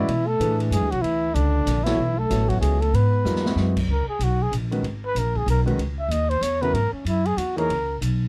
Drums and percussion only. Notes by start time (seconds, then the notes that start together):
0.08 ride
0.41 hi-hat pedal, ride
0.60 ride
0.72 hi-hat pedal, ride
0.92 ride
1.04 ride
1.35 hi-hat pedal, ride
1.67 snare, hi-hat pedal, ride
1.86 snare, ride
2.30 snare, hi-hat pedal, ride
2.50 kick, ride
2.62 hi-hat pedal, ride
2.82 ride
2.94 ride
3.25 snare, hi-hat pedal
3.36 snare
3.46 snare
3.57 snare
3.77 kick, crash
4.20 hi-hat pedal, ride
4.53 hi-hat pedal, ride
4.72 ride
4.84 ride
5.16 hi-hat pedal, ride
5.35 kick
5.48 hi-hat pedal, ride
5.67 ride
5.79 ride
6.11 hi-hat pedal, ride
6.31 ride
6.42 hi-hat pedal, ride
6.62 ride
6.75 ride
7.06 hi-hat pedal, ride
7.25 ride
7.38 hi-hat pedal, ride
7.58 ride
7.70 ride
8.02 hi-hat pedal, ride